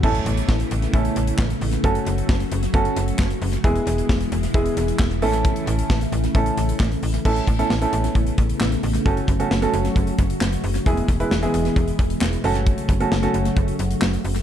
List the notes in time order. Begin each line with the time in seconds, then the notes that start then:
Already playing: C#3 A3
0.03 A1 A3 B3 C#4 E4 A4, kick, crash
0.15 closed hi-hat
0.26 A1, closed hi-hat
0.37 closed hi-hat
0.49 A1, kick, snare
0.60 closed hi-hat
0.71 A1, closed hi-hat
0.82 closed hi-hat
0.93 A1 A3 C#4 E4 A4, kick, closed hi-hat
1.05 closed hi-hat
1.16 A1, closed hi-hat
1.27 closed hi-hat
1.39 A1, kick, snare, clap
1.50 closed hi-hat
1.61 A1, open hi-hat
1.73 closed hi-hat
1.84 F#1 F#3 A3 C#4 F#4 A4, kick, closed hi-hat
1.95 closed hi-hat
2.07 F#1, closed hi-hat
2.18 closed hi-hat
2.29 F#1, kick, snare
2.40 closed hi-hat
2.52 F#1, closed hi-hat
2.63 closed hi-hat
2.74 F#1 A3 C#4 F#4 A4, kick, closed hi-hat
2.85 closed hi-hat
2.97 F#1, closed hi-hat
3.08 closed hi-hat
3.19 F#1, kick, snare, clap
3.31 closed hi-hat
3.42 F#1, open hi-hat
3.53 closed hi-hat
3.64 E1 B2 E3 G#3 B3 E4 G#4, kick, closed hi-hat
3.76 closed hi-hat
3.87 E1, closed hi-hat
3.98 closed hi-hat
4.09 E1, kick, snare
4.21 closed hi-hat
4.32 E1, closed hi-hat
4.43 closed hi-hat
4.54 E1 G#3 B3 E4 G#4, kick, closed hi-hat
4.66 closed hi-hat
4.77 E1, closed hi-hat
4.88 closed hi-hat
4.99 E1, kick, snare, clap
5.11 closed hi-hat
5.22 A1 C#3 A3 C#4 E4 A4, open hi-hat
5.34 closed hi-hat
5.45 kick, closed hi-hat
5.56 closed hi-hat
5.67 A1, closed hi-hat
5.79 closed hi-hat
5.90 A1, kick, snare
6.01 closed hi-hat
6.12 A1, closed hi-hat
6.24 closed hi-hat
6.35 A1 A3 C#4 E4 A4, kick, closed hi-hat
6.46 closed hi-hat
6.57 A1, closed hi-hat
6.69 closed hi-hat
6.80 A1, kick, snare, clap
6.92 closed hi-hat
7.03 A1, open hi-hat
7.14 closed hi-hat
7.25 A1 C#3 A3 B3 C#4 E4 A4, kick, crash
7.36 closed hi-hat
7.47 A1, kick, closed hi-hat
7.59 A3 C#4 E4 A4, closed hi-hat
7.70 A1, snare
7.82 A3 C#4 E4 A4, closed hi-hat
7.93 A1, closed hi-hat
8.04 closed hi-hat
8.15 A1, kick, closed hi-hat
8.27 closed hi-hat
8.38 A1, kick, closed hi-hat
8.49 closed hi-hat
8.61 A1, snare, clap
8.72 closed hi-hat
8.83 A1, open hi-hat
8.95 closed hi-hat
9.06 F#1 F#3 A3 C#4 F#4 A4, kick, closed hi-hat
9.17 closed hi-hat
9.28 F#1, kick, closed hi-hat
9.40 A3 C#4 F#4 A4, closed hi-hat
9.51 F#1, snare
9.62 A3 C#4 F#4 A4, closed hi-hat
9.74 F#1, closed hi-hat
9.85 closed hi-hat
9.96 F#1, kick, closed hi-hat
10.07 closed hi-hat
10.18 F#1, kick, closed hi-hat
10.30 closed hi-hat
10.41 F#1, snare, clap
10.53 closed hi-hat
10.64 F#1, open hi-hat
10.75 closed hi-hat
10.86 E1 B2 E3 G#3 B3 E4 G#4, kick, closed hi-hat
10.97 closed hi-hat
11.08 E1, kick, closed hi-hat
11.20 G#3 B3 E4 B4, closed hi-hat
11.31 E1, snare
11.43 G#3 B3 E4 G#4, closed hi-hat
11.54 E1, closed hi-hat
11.65 closed hi-hat
11.76 E1, kick, closed hi-hat
11.88 closed hi-hat
11.99 E1, kick, closed hi-hat
12.10 closed hi-hat
12.21 E1, snare, clap
12.33 closed hi-hat
12.44 F#1 C#3 F#3 A3 C#4 F#4 A4, open hi-hat
12.55 closed hi-hat
12.67 kick, closed hi-hat
12.78 closed hi-hat
12.89 F#1, kick, closed hi-hat
13.00 A3 C#4 F#4 A4, closed hi-hat
13.12 F#1, snare
13.23 A3 C#4 F#4 A4, closed hi-hat
13.34 F#1, closed hi-hat
13.45 closed hi-hat
13.56 F#1, kick, closed hi-hat
13.68 closed hi-hat
13.79 F#1, closed hi-hat
13.91 closed hi-hat
14.02 F#1, snare, clap
14.13 closed hi-hat
14.24 F#1, open hi-hat
14.36 closed hi-hat